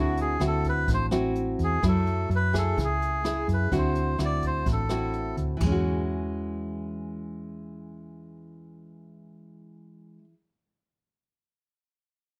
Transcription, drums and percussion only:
0.17 closed hi-hat
0.40 cross-stick, closed hi-hat
0.64 kick, closed hi-hat
0.88 kick, closed hi-hat
1.11 cross-stick, closed hi-hat
1.35 closed hi-hat
1.59 kick, closed hi-hat
1.83 kick, cross-stick, closed hi-hat
2.07 closed hi-hat
2.31 closed hi-hat
2.54 kick, cross-stick, closed hi-hat
2.78 kick, closed hi-hat
3.02 closed hi-hat
3.25 cross-stick, closed hi-hat
3.48 kick, closed hi-hat
3.72 kick, closed hi-hat
3.95 closed hi-hat
4.19 cross-stick, closed hi-hat
4.42 kick, closed hi-hat
4.66 kick, closed hi-hat
4.89 cross-stick, closed hi-hat
5.13 closed hi-hat
5.37 kick, closed hi-hat
5.60 kick, floor tom, splash

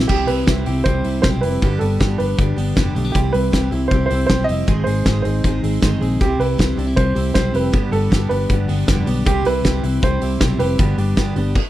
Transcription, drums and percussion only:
0.09 kick, crash
0.28 open hi-hat
0.47 kick, snare, closed hi-hat
0.66 open hi-hat
0.85 kick, closed hi-hat
1.04 open hi-hat
1.23 kick, snare, closed hi-hat
1.43 open hi-hat
1.62 kick, closed hi-hat
1.81 open hi-hat
2.01 kick, snare, closed hi-hat
2.20 open hi-hat
2.39 kick, closed hi-hat
2.58 open hi-hat
2.77 kick, snare, closed hi-hat
2.96 open hi-hat
3.15 kick, closed hi-hat
3.34 open hi-hat
3.53 kick, snare, closed hi-hat
3.72 open hi-hat
3.91 kick, closed hi-hat
4.11 open hi-hat
4.30 kick, snare, closed hi-hat
4.49 open hi-hat
4.68 kick, closed hi-hat
4.87 open hi-hat
5.06 kick, snare, closed hi-hat
5.25 open hi-hat
5.44 kick, closed hi-hat
5.64 open hi-hat
5.82 kick, snare, closed hi-hat
6.02 open hi-hat
6.21 kick, closed hi-hat
6.41 open hi-hat
6.59 kick, snare, closed hi-hat
6.79 open hi-hat
6.97 kick, closed hi-hat
7.16 open hi-hat
7.35 kick, snare, closed hi-hat
7.54 open hi-hat
7.74 kick, closed hi-hat
7.93 open hi-hat
8.12 kick, snare, closed hi-hat
8.31 open hi-hat
8.50 kick, closed hi-hat
8.69 open hi-hat
8.88 kick, snare, closed hi-hat
9.07 open hi-hat
9.26 kick, closed hi-hat
9.45 open hi-hat
9.65 kick, snare, closed hi-hat
9.84 open hi-hat
10.03 kick, closed hi-hat
10.22 open hi-hat
10.41 kick, snare, closed hi-hat
10.60 open hi-hat
10.79 kick, closed hi-hat
10.98 open hi-hat
11.17 kick, snare, closed hi-hat
11.36 open hi-hat
11.55 kick, crash

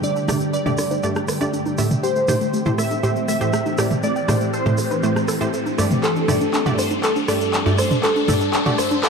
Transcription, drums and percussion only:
0.03 closed hi-hat, shaker
0.16 closed hi-hat, shaker
0.28 cross-stick, open hi-hat, mid tom, high conga, shaker
0.40 closed hi-hat, shaker
0.54 closed hi-hat, shaker
0.66 closed hi-hat, mid tom, shaker
0.78 cross-stick, open hi-hat, shaker
0.91 closed hi-hat, high conga, shaker
1.03 closed hi-hat, shaker
1.15 cross-stick, closed hi-hat, shaker
1.28 cross-stick, open hi-hat, shaker
1.41 closed hi-hat, shaker
1.54 closed hi-hat, shaker
1.66 closed hi-hat, high conga, shaker
1.78 cross-stick, open hi-hat, shaker
1.91 closed hi-hat, mid tom, shaker
2.04 closed hi-hat, shaker
2.16 closed hi-hat, shaker
2.28 cross-stick, open hi-hat, mid tom, high conga, shaker
2.41 closed hi-hat, shaker
2.54 closed hi-hat, shaker
2.66 closed hi-hat, mid tom, shaker
2.78 cross-stick, open hi-hat, shaker
2.91 closed hi-hat, high conga, shaker
3.03 closed hi-hat, shaker
3.16 closed hi-hat, shaker
3.28 cross-stick, open hi-hat, shaker
3.41 closed hi-hat, shaker
3.53 cross-stick, closed hi-hat, shaker
3.66 closed hi-hat, high conga, shaker
3.78 cross-stick, open hi-hat, shaker
3.91 closed hi-hat, mid tom, shaker
4.03 closed hi-hat, shaker
4.16 closed hi-hat, shaker
4.28 cross-stick, open hi-hat, mid tom, high conga, shaker
4.41 closed hi-hat, shaker
4.53 closed hi-hat, shaker
4.66 closed hi-hat, mid tom, shaker
4.78 cross-stick, open hi-hat, shaker
4.91 closed hi-hat, high conga, shaker
5.03 closed hi-hat, shaker
5.16 cross-stick, closed hi-hat, shaker
5.28 cross-stick, open hi-hat, shaker
5.41 closed hi-hat, shaker
5.53 closed hi-hat, shaker
5.66 closed hi-hat, high conga, shaker
5.78 cross-stick, open hi-hat, shaker
5.91 closed hi-hat, mid tom, shaker
6.03 clap, closed hi-hat, shaker
6.16 closed hi-hat, shaker
6.28 cross-stick, open hi-hat, mid tom, high conga, shaker
6.41 closed hi-hat, shaker
6.54 clap, closed hi-hat, shaker
6.66 closed hi-hat, mid tom, shaker
6.78 cross-stick, open hi-hat, shaker
6.90 closed hi-hat, high conga, shaker
7.03 clap, closed hi-hat, shaker
7.16 closed hi-hat, shaker
7.28 cross-stick, open hi-hat, shaker
7.41 closed hi-hat, shaker
7.53 clap, closed hi-hat, shaker
7.66 closed hi-hat, high conga, shaker
7.78 cross-stick, open hi-hat, shaker
7.91 closed hi-hat, mid tom, shaker
8.03 clap, closed hi-hat, shaker
8.16 closed hi-hat, shaker
8.28 cross-stick, open hi-hat, mid tom, high conga, shaker
8.41 closed hi-hat, shaker
8.53 clap, closed hi-hat, shaker
8.66 closed hi-hat, mid tom, shaker
8.78 cross-stick, open hi-hat, shaker
8.91 closed hi-hat, high conga, shaker
9.03 clap, closed hi-hat, shaker

